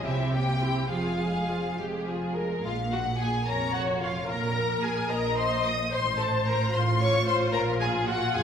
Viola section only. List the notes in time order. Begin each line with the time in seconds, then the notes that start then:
0.04 C4 E4
0.32 A#3 G4
0.61 C4 E4
0.91 F3 F4
1.20 G#3 G#4
1.50 F3 F4
1.79 G#3 G#4
2.08 F3 F4
2.36 G#3 G#4
3.47 C#5
4.29 A#4
5.11 D#5
5.93 C5
6.74 F4